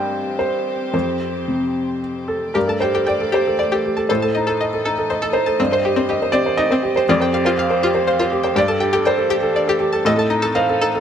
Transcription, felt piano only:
0.00 0.90 G2 medium
0.00 0.93 G3 soft
0.00 0.96 D#5 medium
0.00 0.37 G5 medium
0.39 0.89 C5 medium
0.93 2.51 F2 soft
0.93 1.98 C5 medium
1.48 2.55 C3 soft
2.28 2.53 A4 medium
2.54 4.05 G2 soft
2.54 2.79 A#4 medium
2.68 2.89 A4 soft
2.80 3.03 G4 soft
2.80 3.05 C5 medium
2.95 3.15 A4 soft
3.08 3.31 D5 medium
3.21 3.41 A4 soft
3.34 3.54 G4 soft
3.34 3.57 C5 medium
3.47 3.67 A4 soft
3.59 4.06 D5 medium
3.74 3.93 A4 soft
3.85 4.05 G4 soft
3.98 4.10 A4 soft
4.09 5.56 A2 medium
4.09 5.05 C5 medium
4.24 4.43 A4 soft
4.37 4.56 D#4 soft
4.49 4.68 A4 soft
4.61 4.80 D#5 soft
4.74 4.93 A4 medium
4.86 5.05 D#4 soft
4.98 5.17 A4 medium
5.10 5.30 D#5 soft
5.23 5.42 A4 soft
5.33 5.55 D#4 soft
5.33 5.71 C5 medium
5.47 5.59 A4 medium
5.59 7.04 G2 medium
5.72 5.92 C5 medium
5.85 6.04 G4 medium
5.97 6.17 C5 medium
6.10 6.29 D#5 medium
6.22 6.41 C5 medium
6.32 6.54 G4 medium
6.32 6.56 D5 medium
6.46 6.66 C5 medium
6.57 7.04 D#5 loud
6.71 6.91 C5 medium
6.83 7.03 G4 medium
6.96 7.08 C5 medium
7.09 8.53 F2 medium
7.09 8.04 D5 medium
7.20 7.41 C5 medium
7.33 7.53 G4 medium
7.45 7.65 C5 medium
7.58 7.78 F5 medium
7.70 7.90 C5 medium
7.83 8.03 G4 medium
7.95 8.15 C5 medium
8.07 8.27 F5 medium
8.20 8.40 C5 medium
8.32 8.52 G4 medium
8.44 8.57 C5 medium
8.55 10.01 G2 medium
8.55 9.04 D5 loud
8.68 8.89 A4 medium
8.80 9.01 G4 medium
8.94 9.14 A4 medium
9.05 9.53 C5 medium
9.05 9.26 D5 medium
9.17 9.38 A4 medium
9.29 9.50 G4 medium
9.43 9.63 A4 medium
9.55 9.75 D5 medium
9.68 9.88 A4 medium
9.80 10.00 G4 medium
9.93 10.06 A4 medium
10.05 11.00 A2 medium
10.05 10.53 D#5 loud
10.17 10.38 A4 medium
10.30 10.51 D#4 medium
10.43 10.64 A4 medium
10.55 10.77 C5 medium
10.55 11.00 F5 medium
10.69 10.90 A4 medium
10.81 11.00 D#4 medium
10.95 11.00 A4 medium

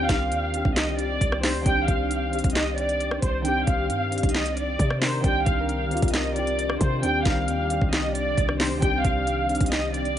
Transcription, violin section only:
0.09 0.72 F5 medium
0.76 0.96 D#5 medium
0.99 1.41 D5 medium
1.43 1.64 C5 medium
1.66 1.86 G5 loud
1.88 2.51 F5 medium
2.55 2.76 D#5 medium
2.78 3.20 D5 medium
3.23 3.43 C5 medium
3.45 3.65 G5 loud
3.67 4.31 F5 medium
4.35 4.55 D#5 medium
4.57 4.99 D5 medium
5.02 5.22 C5 medium
5.24 5.44 G5 loud
5.46 6.10 F5 medium
6.14 6.34 D#5 medium
6.36 6.78 D5 medium
6.81 7.01 C5 medium
7.03 7.23 G5 loud
7.26 7.89 F5 medium
7.93 8.13 D#5 medium
8.15 8.57 D5 medium
8.60 8.80 C5 medium
8.82 9.02 G5 loud
9.05 9.68 F5 medium
9.72 9.92 D#5 medium
9.94 10.19 D5 medium

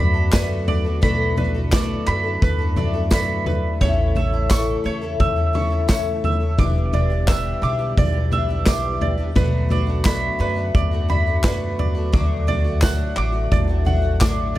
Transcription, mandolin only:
0.00 0.32 B4 medium
0.00 0.67 D5 loud
0.00 1.02 B5 medium
0.33 1.36 B4 medium
0.68 1.71 D5 medium
1.03 2.06 B5 medium
1.38 2.41 B4 medium
1.73 2.76 D5 medium
2.07 3.11 B5 medium
2.42 3.45 B4 loud
2.77 3.81 D5 medium
3.12 3.81 B5 loud
3.47 3.81 B4 medium
3.81 4.84 C#5 medium
4.16 5.19 E5 medium
4.51 5.54 C#6 medium
4.86 5.89 C#5 medium
5.20 6.23 E5 loud
5.55 6.59 C#6 medium
5.90 6.59 C#5 medium
6.25 6.59 E5 medium
6.59 7.62 D6 loud
6.94 7.97 D5 medium
7.28 8.31 E5 medium
7.63 8.66 D6 medium
7.98 9.00 D5 loud
8.32 9.36 E5 medium
8.67 9.36 D6 medium
9.02 9.36 D5 medium
9.36 10.39 B4 medium
9.71 10.73 D5 medium
10.06 11.08 B5 medium
10.40 11.43 B4 medium
10.75 11.78 D5 loud
11.10 12.13 B5 medium
11.44 12.13 B4 medium
11.79 12.13 D5 medium
12.13 13.16 D6 medium
12.48 13.51 D5 medium
12.83 13.85 F#5 medium
13.17 14.20 D6 medium
13.52 14.54 D5 medium
13.86 14.58 F#5 medium
14.21 14.58 D6 medium

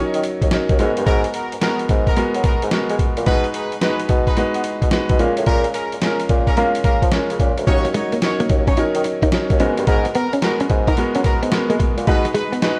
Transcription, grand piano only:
0.00 0.52 F#3 loud
0.00 0.52 C#4 medium
0.00 0.53 D#4 medium
0.00 0.53 A#4 loud
0.52 0.79 F#3 medium
0.52 0.79 C#4 medium
0.52 0.80 D#4 medium
0.52 0.79 A#4 loud
0.79 1.49 G#3 medium
0.79 1.49 B3 medium
0.79 1.49 F#4 medium
0.79 1.49 A#4 medium
1.62 1.98 G#3 medium
1.62 1.98 B3 medium
1.62 1.98 F#4 medium
1.62 1.99 A#4 medium
2.17 2.53 G#3 medium
2.17 2.53 B3 medium
2.17 2.53 F#4 medium
2.17 2.53 A#4 loud
2.72 3.08 G#3 medium
2.72 3.08 B3 medium
2.72 3.08 F#4 medium
2.72 3.09 A#4 medium
3.27 3.63 G#3 medium
3.27 3.63 D#4 medium
3.27 3.63 F#4 medium
3.27 3.64 B4 medium
3.82 4.18 G#3 medium
3.82 4.18 D#4 medium
3.82 4.18 F#4 medium
3.82 4.19 B4 medium
4.37 4.73 G#3 medium
4.37 4.73 D#4 medium
4.37 4.74 F#4 medium
4.37 4.74 B4 loud
4.92 5.18 G#3 medium
4.92 5.20 D#4 medium
4.92 5.20 F#4 medium
4.92 5.20 B4 loud
5.19 5.89 G#3 medium
5.19 5.89 C#4 medium
5.19 5.89 F4 medium
5.19 5.89 A#4 medium
6.02 6.38 G#3 medium
6.02 6.39 C#4 medium
6.02 6.39 F4 medium
6.02 6.39 A#4 medium
6.57 6.93 G#3 medium
6.57 6.93 C#4 medium
6.57 6.94 F4 medium
6.57 6.94 A#4 medium
7.12 7.48 G#3 medium
7.12 7.48 C#4 medium
7.12 7.49 F4 medium
7.12 7.49 A#4 medium
7.67 8.03 F#3 medium
7.67 8.03 C#4 medium
7.67 8.04 D#4 medium
7.67 8.04 A#4 medium
8.22 8.58 F#3 medium
8.22 8.59 C#4 medium
8.22 8.59 D#4 medium
8.22 8.59 A#4 medium
8.78 9.14 F#3 medium
8.78 9.14 C#4 medium
8.78 9.14 D#4 medium
8.78 9.14 A#4 loud
9.32 9.60 F#3 medium
9.32 9.60 C#4 medium
9.32 9.60 D#4 medium
9.32 9.60 A#4 medium
9.60 10.29 G#3 medium
9.60 10.29 B3 medium
9.60 10.30 F#4 medium
9.60 10.30 A#4 medium
10.42 10.79 G#3 medium
10.42 10.79 B3 medium
10.42 10.79 F#4 medium
10.42 10.79 A#4 medium
10.98 11.34 G#3 medium
10.98 11.34 B3 medium
10.98 11.34 F#4 medium
10.98 11.34 A#4 medium
11.52 11.89 G#3 medium
11.52 11.89 B3 medium
11.52 11.89 F#4 medium
11.52 11.89 A#4 loud
12.07 12.43 G#3 medium
12.07 12.44 D#4 medium
12.07 12.44 F#4 medium
12.07 12.44 B4 medium
12.62 12.79 G#3 medium
12.62 12.79 D#4 medium
12.62 12.79 F#4 medium
12.62 12.79 B4 loud

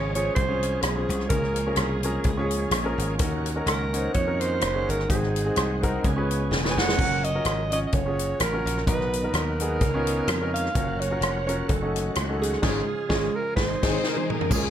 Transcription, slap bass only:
0.00 0.29 G#1 medium
0.36 0.77 C2 medium
0.82 1.06 B1 medium
1.09 1.27 C2 medium
1.30 1.71 C#2 loud
1.77 2.18 C2 medium
2.24 2.65 C#2 medium
2.71 2.94 A#1 medium
2.98 3.16 G#1 medium
3.19 3.60 D#2 loud
3.66 4.07 C#2 medium
4.15 4.64 F2 medium
4.62 4.85 F#1 medium
4.89 5.06 G1 medium
5.09 5.49 G#1 medium
5.57 5.97 C2 medium
6.04 6.52 C#2 medium
6.51 6.73 E1 loud
6.77 6.95 F1 medium
6.98 7.38 F#1 loud
7.45 7.85 G#1 medium
7.93 8.33 F#1 medium
8.40 8.62 A1 medium
8.65 8.83 A#1 medium
8.87 9.27 B1 medium
9.33 9.81 D#2 medium
9.81 10.21 C#2 medium
10.27 10.68 F2 medium
10.75 11.15 F#1 loud
11.21 11.61 F1 medium
11.69 12.09 F#1 medium
12.16 12.56 C#2 medium
12.63 12.81 G#1 loud
13.10 13.28 G#1 loud
13.57 13.75 G#1 medium
13.83 13.97 G#1 medium
14.51 14.70 C#2 loud

